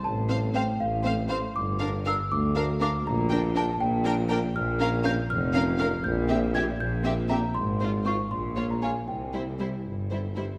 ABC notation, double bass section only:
X:1
M:6/8
L:1/8
Q:3/8=80
K:Gdor
V:1 name="Double bass section" clef=bass
A,,,3 A,,,3 | G,,,3 D,,3 | B,,,3 B,,,3 | [K:Cphr] B,,,3 F,,,3 |
B,,,3 B,,,3 | A,,,3 B,,,3 | C,,3 G,,,3 |]